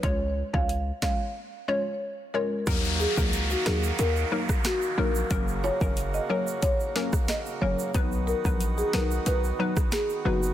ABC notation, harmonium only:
X:1
M:4/4
L:1/8
Q:1/4=91
K:Ebm
V:1 name="Harmonium"
z8 | G8- | G8 | ^F8 |]
V:2 name="Harmonium" clef=bass
z8 | [E,B,]8 | [D,B,]8 | [^D,=B,]8 |]